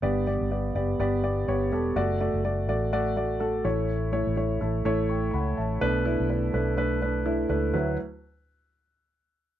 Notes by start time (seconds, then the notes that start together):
0.02 G1 G2 B3 G4 D5
0.27 B3 G4 D5
0.41 G1
0.51 B3 G4 D5
0.75 F#1 B3 G4 D5
0.99 G1 B3 G4 D5
1.23 B3 G4 D5
1.48 G1 B3 G4 C#5
1.72 E1 B3 G4 A4
1.96 F#1 A3 F#4 D5
2.21 A3 F#4 D5
2.34 F#1
2.44 A3 F#4 D5
2.68 A1 A3 F#4 D5
2.93 A3 F#4 D5
3.16 A3 F#4 D5
3.40 A3 F#4 A4
3.65 A1 A2 A3 E4 C#5
4.12 A3 E4 C#5
4.27 A1
4.36 A3 E4 C#5
4.61 A1 A3 E4 A4
4.85 A1 A3 E4 C#5
5.09 G5 C#6
5.34 C#2 F#5 B5
5.57 A1 E5 A5
5.81 B1 B2 A3 D4 B4
6.05 A3 D4 E4
6.20 B1
6.30 A3 D4 B4
6.53 B1 A3 D4 B4
6.77 A3 D4 B4
7.02 A3 D4 B4
7.26 A3 D4 E4
7.49 C#2 A3 D4 B4
7.73 D2 F#3 E4 B4